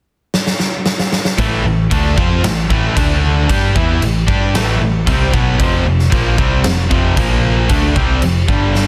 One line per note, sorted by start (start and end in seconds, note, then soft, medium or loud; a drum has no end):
0.34 snare medium
0.47 snare medium
0.60 snare medium
0.86 snare medium
0.99 snare medium
1.13 snare medium
1.25 snare medium
1.38 1.63 A1 medium
1.38 1.64 A2 medium
1.38 1.64 E3 medium
1.38 1.65 A3 loud
1.38 kick medium
1.38 crash medium
1.65 1.89 A1 medium
1.65 1.86 A2 medium
1.65 1.86 E3 medium
1.91 2.16 D2 medium
1.91 2.17 D3 medium
1.91 2.17 A3 loud
1.91 2.17 D4 loud
1.91 kick loud
1.91 crash medium
2.18 2.42 F2 medium
2.18 2.43 F3 medium
2.18 2.43 C4 medium
2.18 2.44 F4 loud
2.18 kick loud
2.43 2.68 A1 medium
2.43 2.65 A2 medium
2.43 2.65 E3 medium
2.43 snare loud
2.43 crash medium
2.70 2.94 A1 medium
2.70 2.96 A2 medium
2.70 2.96 E3 medium
2.70 2.96 A3 medium
2.70 kick loud
2.96 3.45 D2 medium
2.96 3.48 D3 medium
2.96 3.48 A3 loud
2.96 3.48 D4 loud
2.96 kick loud
2.96 crash medium
3.48 3.74 G2 medium
3.48 3.74 G3 medium
3.48 3.75 D4 medium
3.48 3.75 G4 loud
3.48 kick loud
3.48 crash medium
3.75 4.00 E2 medium
3.75 4.01 E3 medium
3.75 4.01 B3 medium
3.75 4.01 E4 loud
3.75 kick loud
4.01 4.26 A1 medium
4.01 4.23 A2 medium
4.01 4.23 E3 medium
4.01 crash medium
4.28 4.53 G2 medium
4.28 4.53 G3 medium
4.28 4.54 D4 loud
4.28 4.54 G4 medium
4.28 kick loud
4.54 4.78 A1 loud
4.54 4.80 A2 medium
4.54 4.81 E3 loud
4.54 4.81 A3 loud
4.54 snare loud
4.54 crash medium
4.80 5.05 A1 medium
4.80 5.02 A2 medium
4.80 5.02 E3 medium
5.07 5.31 C2 medium
5.07 5.33 C3 medium
5.07 5.33 G3 medium
5.07 5.34 C4 loud
5.07 kick loud
5.07 crash medium
5.33 5.58 B1 medium
5.33 5.59 B2 medium
5.33 5.59 F#3 loud
5.33 5.60 B3 loud
5.33 kick loud
5.59 5.84 F1 medium
5.59 5.85 F2 loud
5.59 5.85 C3 loud
5.59 5.86 F3 loud
5.59 kick loud
5.59 crash medium
5.86 6.10 F1 medium
5.86 6.07 F2 medium
5.86 6.07 C3 medium
5.99 snare soft
6.12 6.37 A#1 medium
6.12 6.37 A#2 loud
6.12 6.38 F3 loud
6.12 6.38 A#3 loud
6.12 kick loud
6.12 crash medium
6.38 6.63 C2 medium
6.38 6.63 C3 medium
6.38 6.64 G3 medium
6.38 6.64 C4 loud
6.38 kick loud
6.64 6.89 F1 medium
6.64 6.86 F2 medium
6.64 6.86 C3 medium
6.64 snare loud
6.64 crash medium
6.90 7.15 F1 medium
6.90 7.16 F2 medium
6.90 7.17 C3 medium
6.90 7.17 F3 medium
6.90 kick loud
7.17 7.66 A#1 loud
7.17 7.69 A#2 medium
7.17 7.69 F3 medium
7.17 7.70 A#3 loud
7.17 kick loud
7.17 crash medium
7.69 7.94 D2 medium
7.69 7.95 D3 medium
7.69 7.96 A3 loud
7.69 7.96 D4 loud
7.69 kick loud
7.69 crash medium
7.96 8.20 C2 medium
7.96 8.21 C3 medium
7.96 8.22 G3 loud
7.96 8.22 C4 medium
7.96 kick loud
8.22 8.46 F1 medium
8.22 8.43 F2 medium
8.22 8.43 C3 medium
8.22 crash medium
8.48 8.87 G1 medium
8.48 8.87 G2 medium
8.48 8.87 D3 medium
8.48 8.87 G3 medium
8.48 kick loud
8.75 snare medium